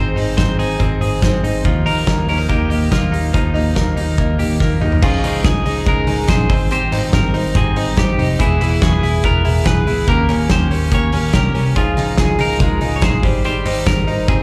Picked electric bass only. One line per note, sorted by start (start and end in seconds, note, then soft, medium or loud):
0.00 0.13 G#1 loud
0.16 0.34 G#1 medium
0.38 0.55 G#1 medium
0.58 0.76 G#1 medium
0.80 0.97 G#1 loud
1.01 1.18 G#1 loud
1.22 1.40 G#1 medium
1.43 1.61 G#1 loud
1.65 1.82 D#2 loud
1.86 2.03 D#2 medium
2.07 2.24 D#2 medium
2.28 2.45 D#2 medium
2.50 2.67 D#2 loud
2.70 2.88 D#2 medium
2.92 3.09 D#2 medium
3.12 3.30 D#2 medium
3.34 3.51 D#2 loud
3.55 3.72 D#2 medium
3.76 3.94 D#2 loud
3.97 4.15 D#2 medium
4.18 4.35 D#2 loud
4.40 4.57 D#2 medium
4.60 4.78 D#2 medium
4.82 4.99 D#2 medium
5.03 5.20 C#2 loud
5.24 5.41 C#2 loud
5.45 5.62 C#2 medium
5.66 5.83 C#2 loud
5.86 6.04 C#2 loud
6.07 6.25 C#2 loud
6.28 6.46 A#1 loud
6.50 6.84 G#1 loud
6.92 7.09 G#1 medium
7.13 7.30 G#1 loud
7.34 7.52 G#1 loud
7.55 7.72 G#1 loud
7.76 7.94 G#1 loud
7.97 8.15 G#1 loud
8.18 8.36 F1 medium
8.40 8.57 E1 loud
8.60 8.77 E1 loud
8.82 8.99 E1 loud
9.02 9.20 E1 loud
9.24 9.41 E1 medium
9.44 9.62 E1 loud
9.66 9.83 E1 medium
9.86 10.04 C#2 medium
10.08 10.25 D#2 loud
10.28 10.46 D#2 medium
10.50 10.67 D#2 loud
10.71 10.88 D#2 medium
10.92 11.09 D#2 loud
11.13 11.30 D#2 medium
11.34 11.51 C2 loud
11.56 11.73 C2 medium
11.76 11.93 C#2 loud
11.97 12.15 C#2 loud
12.18 12.35 C#2 medium
12.39 12.57 C#2 loud
12.60 12.77 C#2 loud
12.82 12.99 C#2 medium
13.02 13.19 A#1 loud
13.23 13.58 G#1 loud
13.66 13.83 G#1 medium
13.86 14.04 G#1 loud
14.08 14.25 G#1 loud
14.28 14.43 G#1 loud